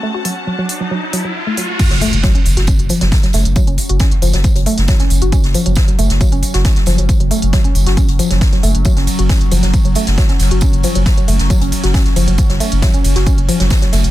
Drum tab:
CC |----------------|x---------------|----------------|----------------|
RD |----------------|----------------|----------------|----------------|
HH |--o---o---o---o-|xxoxxxoxxxoxxxox|xxoxxxoxxxoxxxox|xxoxxxoxxxoxxxox|
TB |----------------|x-x-x-x-x-x-x-x-|x-x-x-x-x-x-x-x-|x-x-x-x-x-x-x-x-|
SD |----------------|-o--o--o---oooo-|----o--o---ooo--|-o--o--o---oooo-|
BD |----------------|o---o---o---o---|o---o---o---o---|o---o---o---o---|

CC |----------------|----------------|----------------|----------------|
RD |----------------|--x---x---x---x-|--x---x---x---x-|--x---x---x---x-|
HH |xxoxxxoxxxoxxxox|xxoxxxoxxxoxxxox|xxoxxxoxxxoxxxox|xxoxxxoxxxoxxxox|
TB |x-x-x-x-x-x-x-x-|x-x-x-x-x-x-x-x-|x-x-x-x-x-x-x-x-|x-x-x-x-x-x-x-x-|
SD |----o--o---ooo--|-o--o--o---oooo-|----o--o---ooo--|-o--o--o---oooo-|
BD |o---o---o---o---|o---o---o---o---|o---o---o---o---|o---o---o---o---|